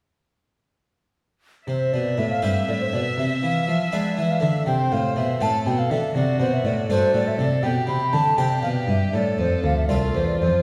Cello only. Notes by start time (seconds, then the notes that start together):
1.68 C3
1.93 B2
2.18 A2
2.44 G2
2.68 A2
2.94 B2
3.18 C3
3.43 E3
3.69 F3
3.93 G#3
4.18 E3
4.43 D3
4.67 C3
4.93 A2
5.17 B2
5.41 A2
5.66 B2
5.91 D3
6.16 C3
6.40 B2
6.64 A2
6.89 G2
7.14 A2
7.38 C3
7.63 B2
7.88 C3
8.13 D3
8.38 C3
8.63 B2
8.88 G2
9.13 A2
9.39 F2
9.64 D2
9.90 C2
10.16 E2
10.42 F2